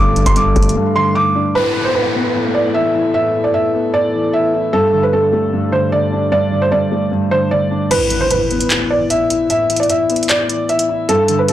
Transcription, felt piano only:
Already playing: D6
0.26 C6
0.36 D6
0.96 C6
1.15 D6
1.55 B4
1.85 C5
1.95 B4
2.55 D5
2.74 E5
3.14 E5
3.44 D5
3.54 E5
3.94 D5
4.33 E5
4.73 A4
5.03 B4
5.13 A4
5.72 C5
5.92 D5
6.32 D5
6.62 C5
6.72 D5
7.31 C5
7.51 D5
7.91 B4
8.21 C5
8.31 B4
8.90 D5
9.10 E5
9.50 E5
9.80 D5
9.90 E5
10.30 D5
10.69 E5
11.09 A4
11.39 B4
11.49 A4

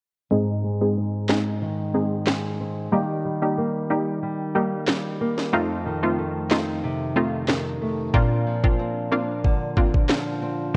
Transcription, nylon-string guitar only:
0.31 G#2
0.64 G#3
0.97 C4
1.29 D#4
1.62 D#3
1.94 C4
2.27 G#3
2.60 C4
2.92 D#3
3.25 G3
3.58 A#3
3.90 D#4
4.23 G3
4.55 A#3
4.88 G3
5.21 A#3
5.53 F2
5.86 D#3
6.18 A3
6.51 D#4
6.84 C3
7.16 A3
7.49 D#3
7.81 A3
8.14 A#2
8.47 F3
8.79 C4
9.12 D4
9.44 D3
9.77 C4
10.10 F3
10.42 C4

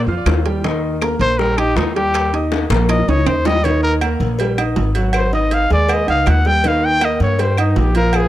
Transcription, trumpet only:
1.21 C5
1.38 A#4
1.58 G4
1.77 D#4
1.95 G4
2.90 D#5
3.09 C#5
3.27 C5
3.47 D#5
3.64 C#5
3.83 A#4
5.16 C5
5.34 D#5
5.54 F5
5.73 D5
5.93 D#5
6.10 F5
6.29 F#5
6.47 G5
6.68 F5
6.85 G5
7.05 D#5
7.22 C#5
7.41 C5
7.60 D#4
7.79 G4
7.96 A#4
8.16 G#4

